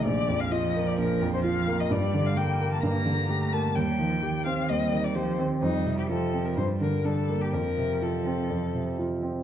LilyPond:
<<
  \new Staff \with { instrumentName = "Violin" } { \time 4/4 \key bes \major \tempo 4 = 128 d''8. f''16 ees''8. d''16 bes'8. c''16 f''8. ees''16 | \key f \mixolydian d''8. f''16 g''8. a''16 bes''4. a''8 | g''4. f''8 ees''8. d''16 c''8 r8 | ees'8. g'16 a'8. bes'16 c''8 bes'8 a'8. g'16 |
bes'4 a'2 r4 | }
  \new Staff \with { instrumentName = "Cello" } { \clef bass \time 4/4 \key bes \major f1 | \key f \mixolydian g4 bes2 a4 | g8 f8 ees4 g4 f8 ees8 | g4 f4 g4 g4 |
f2.~ f8 r8 | }
  \new Staff \with { instrumentName = "Grand piano" } { \clef bass \time 4/4 \key bes \major bes,,8 f,8 f'8 bes8 bes,,8 f,8 f'8 bes8 | \key f \mixolydian g,8 d8 g'8 bes8 g,8 d8 g'8 bes8 | ees,8 ees8 g'8 c'8 ees,8 ees8 g'8 c'8 | f,8 c8 f'8 c'8 g,8 d8 d'8 bes8 |
f,8 c8 f'8 c'8 f,8 c8 f'8 c'8 | }
>>